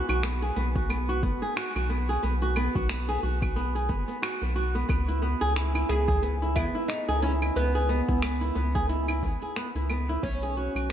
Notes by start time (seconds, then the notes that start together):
0.09 B1 F#4, claves, shaker
0.23 B3, finger snap, open hi-hat, shaker
0.42 G#4, open hi-hat, shaker
0.56 B1 B3, shaker
0.76 F#4, kick, open hi-hat, shaker
0.90 B3, open hi-hat, claves, shaker
1.09 F#4, open hi-hat, shaker
1.23 F#1 B3, kick, shaker
1.42 G#4, shaker
1.56 F#4, finger snap, open hi-hat, shaker
1.76 B1 F#4, open hi-hat, claves, shaker
1.90 B3, shaker
2.09 G#4, open hi-hat, shaker
2.23 B1 B3, open hi-hat, shaker
2.42 F#4, open hi-hat, shaker
2.56 B3, claves, shaker
2.75 B1 F#4, kick, open hi-hat, shaker
2.89 B3, finger snap, open hi-hat, shaker
3.09 G#4, open hi-hat, shaker
3.23 B1 F#4, shaker
3.42 F#4, kick, open hi-hat, claves, shaker
3.56 B3, open hi-hat, shaker
3.75 G#4, open hi-hat, shaker
3.89 F#1 B3, kick, shaker
4.08 B3, open hi-hat, shaker
4.22 F#4, finger snap, open hi-hat, claves, shaker
4.41 B1 B3, open hi-hat, shaker
4.56 F#4, shaker
4.75 B3, open hi-hat, shaker
4.89 C#2 B3, kick, open hi-hat, claves, shaker
5.08 E4, open hi-hat, shaker
5.22 B3, shaker
5.41 C#2 G#4, shaker
5.56 E4, finger snap, open hi-hat, shaker
5.75 E4, open hi-hat, claves, shaker
5.89 C#2 B3 G#4, shaker
6.08 G#4, kick, open hi-hat, udu, shaker
6.22 B3, open hi-hat, shaker
6.42 E4, open hi-hat, shaker
6.56 G#1 B3 E4, kick, udu, claves, shaker
6.75 E4, shaker
6.88 B3 D#4, finger snap, open hi-hat, shaker
7.08 C#2 G#4, open hi-hat, shaker
7.22 C#4 E4, shaker
7.42 E4, open hi-hat, claves, shaker
7.56 C#2 B3, open hi-hat, shaker
7.75 G#4, open hi-hat, shaker
7.89 B3, shaker
8.08 C#2 E4, kick, open hi-hat, shaker
8.22 B3, finger snap, open hi-hat, claves, shaker
8.41 E4, open hi-hat, shaker
8.55 C#2 B3, shaker
8.75 G#4, kick, open hi-hat, udu, shaker
8.89 E4, open hi-hat, shaker
9.08 E4, open hi-hat, claves, shaker
9.23 G#1 B3, kick, udu, shaker
9.42 G#4, open hi-hat, shaker
9.56 B3, finger snap, open hi-hat, shaker
9.75 C#2 E4, open hi-hat, shaker
9.90 B3, claves, shaker
10.09 E4, open hi-hat, shaker
10.23 B1 B3 C#4, kick, open hi-hat, shaker
10.42 G#4, open hi-hat, shaker
10.57 F#4, shaker
10.75 B1 F#4, claves, shaker
10.90 D#4